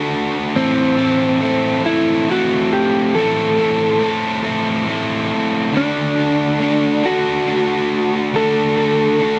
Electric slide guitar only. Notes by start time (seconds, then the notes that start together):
0.56 C4
1.86 E4
2.31 F#4
2.73 G4
3.15 A4
5.77 D4
7.06 F#4
8.36 A4